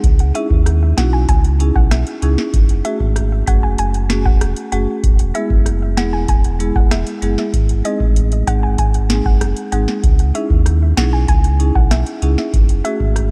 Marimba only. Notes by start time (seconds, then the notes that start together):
0.35 C#4 D#4 E4 G#4
0.97 C#4 D#4 E4 F#4
1.59 C#4 D#4 E4 G#4
2.22 C#4 D#4 E4 G#4
2.84 A3 C#4 F#4 G#4
3.47 A3 C#4 F#4 G#4
4.09 A3 C#4 F#4 G#4
4.72 A3 C#4 F#4 G#4
5.34 G#3 B3 E4 G#4
5.97 G#3 B3 E4 G#4
6.59 G#3 B3 E4 G#4
7.22 G#3 B3 E4 G#4
7.85 G#3 C4 D#4 G#4
8.47 G#3 C4 D#4 G#4
9.09 G#3 C4 D#4 G#4
9.72 G#3 C4 D#4 G#4
10.34 C#4 D#4 E4 G#4
10.97 C#4 D#4 E4 G#4
11.59 C#4 D#4 E4 G#4
12.22 C#4 D#4 E4 G#4
12.84 A3 C#4 F#4 G#4